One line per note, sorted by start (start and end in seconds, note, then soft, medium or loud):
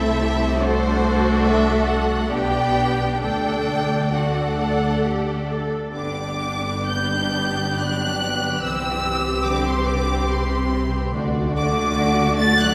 0.00 2.26 C2 medium
0.00 0.60 A3 medium
0.00 0.60 C4 medium
0.00 0.60 E4 medium
0.00 0.20 A4 medium
0.00 0.60 A4 medium
0.00 0.60 E5 loud
0.20 0.62 G4 medium
0.61 2.27 A3 medium
0.61 2.30 D4 medium
0.61 2.30 F#4 medium
0.61 2.27 A4 medium
0.61 1.02 A4 medium
0.61 1.44 C5 loud
1.03 2.28 A4 medium
1.43 1.86 E5 medium
1.86 2.30 F#5 medium
2.30 3.19 B1 medium
2.30 3.21 B3 medium
2.30 3.19 D4 medium
2.30 3.21 G4 medium
2.30 3.20 D5 medium
2.30 3.21 G5 medium
3.21 5.74 D2 medium
3.21 4.12 A3 medium
3.21 4.12 D4 medium
3.21 4.02 A4 medium
3.21 4.12 A4 medium
3.21 4.12 D5 medium
3.21 4.12 G5 loud
4.13 5.71 A3 medium
4.13 5.71 D4 medium
4.13 4.56 F#4 medium
4.13 5.71 A4 medium
4.13 5.71 D5 medium
4.13 5.50 F#5 medium
4.60 5.04 A4 medium
5.04 5.49 G4 medium
5.49 5.94 A4 medium
5.93 8.59 G1 medium
5.93 6.85 D3 medium
5.93 8.59 B3 medium
5.93 8.59 D4 medium
5.93 11.11 G4 medium
5.93 8.60 D5 medium
5.93 6.85 D6 medium
6.89 7.79 G3 medium
6.89 7.78 G6 medium
7.79 8.64 F#3 medium
7.79 8.64 F#6 loud
8.63 11.11 C2 medium
8.63 9.45 E3 medium
8.63 11.11 C4 medium
8.63 11.11 G4 medium
8.63 11.11 B4 medium
8.63 9.44 E6 loud
9.46 9.66 D3 medium
9.46 9.67 D6 medium
9.66 9.87 C3 medium
9.66 9.88 C6 medium
9.87 10.30 D3 medium
9.87 10.29 D6 loud
10.30 11.15 C3 medium
10.30 11.15 C6 medium
11.15 12.74 D2 medium
11.15 12.74 A3 medium
11.15 12.74 D4 medium
11.15 12.74 F#4 medium
11.15 12.74 D5 medium
11.56 12.34 D3 medium
11.56 12.34 D6 loud
12.38 12.58 A3 medium
12.38 12.58 A6 loud
12.58 12.74 F#3 medium
12.58 12.74 F#6 loud